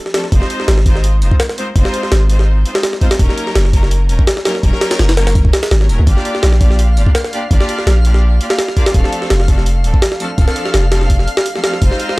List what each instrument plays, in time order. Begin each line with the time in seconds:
0.06 snare
0.14 string section F3 A3 C4 D4 A4, snare, open hi-hat
0.24 snare
0.32 808-style bass F1, string section G#3 C4 D#4 F4 C5, kick, open hi-hat
0.42 snare
0.50 open hi-hat
0.60 snare
0.68 808-style bass G#1, snare, open hi-hat
0.78 snare
0.86 string section G#3 C4 D#4 F4 C5, kick, open hi-hat
0.95 snare
1.04 open hi-hat
1.22 808-style bass F1, string section G#3 C4 D#4 F4 C5, open hi-hat
1.31 kick
1.40 snare, open hi-hat
1.49 snare
1.58 string section G#3 C4 D#4 F4 C5, open hi-hat
1.76 808-style bass F1, string section G#3 C4 D#4 F4 C5, kick, open hi-hat
1.85 snare
1.94 open hi-hat
2.04 snare
2.12 808-style bass G#1, snare, open hi-hat
2.30 string section G#3 C4 D#4 F4 C5, open hi-hat
2.40 snare
2.65 string section G#3 C4 D#4 F4 C5, open hi-hat
2.75 snare
2.84 snare, open hi-hat
2.93 snare
3.01 string section G#3 C4 D#4 F4 C5, kick, open hi-hat
3.11 snare, open hi-hat
3.19 808-style bass D#1, string section F#3 A#3 C#4 D#4 A#4, kick, open hi-hat
3.29 snare
3.38 open hi-hat
3.47 snare
3.56 808-style bass F#1, snare, open hi-hat
3.65 snare
3.73 string section F#3 A#3 C#4 D#4 A#4, kick, open hi-hat
3.83 snare
3.91 open hi-hat
4.09 808-style bass D#1, string section F#3 A#3 C#4 D#4 A#4, open hi-hat
4.19 kick
4.27 snare, open hi-hat
4.37 snare
4.45 string section F#3 A#3 C#4 D#4 A#4, snare, open hi-hat
4.55 snare
4.63 808-style bass D#1, string section F#3 A#3 C#4 D#4 A#4, kick, open hi-hat
4.73 snare
4.81 snare, open hi-hat
4.91 snare, open hi-hat
4.99 808-style bass F#1, snare, open hi-hat
5.09 snare, open hi-hat
5.17 string section F#3 A#3 C#4 D#4 A#4, snare, open hi-hat
5.27 snare, open hi-hat
5.35 kick, open hi-hat
5.45 kick
5.53 snare, open hi-hat
5.63 snare, open hi-hat
5.71 808-style bass G#1, snare, open hi-hat
5.81 string section F#3 A#3 C#4 D#4 A#4, snare
5.89 808-style bass D#1, string section F#3 A#3 C#4 D#4 A#4, open hi-hat
5.99 808-style bass C#2
6.07 808-style bass G1, string section A#3 D4 F4 G4 D5, synth texture F5, kick, open hi-hat
6.17 snare
6.25 open hi-hat
6.35 snare
6.43 808-style bass A#1, snare, open hi-hat
6.53 snare
6.61 string section A#3 D4 F4 G4 D5, kick, open hi-hat
6.71 snare
6.79 open hi-hat
6.97 808-style bass G1, string section A#3 D4 F4 G4 D5, open hi-hat
7.06 kick
7.15 snare, open hi-hat
7.24 snare
7.33 string section A#3 D4 F4 G4 D5, open hi-hat
7.51 808-style bass G1, string section A#3 D4 F4 G4 D5, kick, open hi-hat
7.61 snare
7.69 open hi-hat
7.79 snare
7.87 808-style bass A#1, snare, open hi-hat
8.04 string section A#3 D4 F4 G4 D5, open hi-hat
8.14 snare
8.41 string section A#3 D4 F4 G4 D5, open hi-hat
8.50 snare
8.59 snare, open hi-hat
8.68 snare
8.77 string section A#3 D4 F4 G4 D5, kick, open hi-hat
8.86 snare, open hi-hat
8.94 808-style bass D1, string section F3 A3 C4 D4 A4, kick, open hi-hat
9.04 snare
9.12 open hi-hat
9.22 snare
9.30 808-style bass F1, snare, open hi-hat
9.40 snare
9.48 string section F3 A3 C4 D4 A4, kick, open hi-hat
9.58 snare
9.66 open hi-hat
9.84 808-style bass D1, string section F3 A3 C4 D4 A4, open hi-hat
9.94 kick
10.02 snare, open hi-hat
10.12 snare
10.20 string section F3 A3 C4 D4 A4, open hi-hat
10.38 808-style bass D1, string section F3 A3 C4 D4 A4, kick, open hi-hat
10.48 snare
10.56 open hi-hat
10.66 snare
10.74 808-style bass F1, snare, open hi-hat
10.92 string section F3 A3 C4 D4 A4, snare, open hi-hat
11.02 snare
11.10 kick, open hi-hat
11.19 snare
11.28 open hi-hat
11.37 snare
11.46 open hi-hat
11.56 string section F3 A3 C4 D4 A4, snare
11.64 string section F3 A3 C4 D4 A4, snare, open hi-hat
11.74 snare
11.82 808-style bass F1, string section G#3 C4 D#4 F4 C5, kick, open hi-hat
11.91 snare
12.00 open hi-hat
12.09 snare